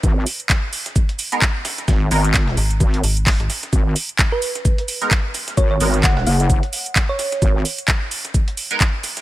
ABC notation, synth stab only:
X:1
M:4/4
L:1/16
Q:"Swing 16ths" 1/4=130
K:G#m
V:1 name="Synth stab"
z8 z3 [G,B,DA] z4 | z2 [G,B,DA] z12 z | z8 z3 [G,B,DA] z4 | z2 [G,B,DA] z12 z |
z8 z3 [G,B,DA] z4 |]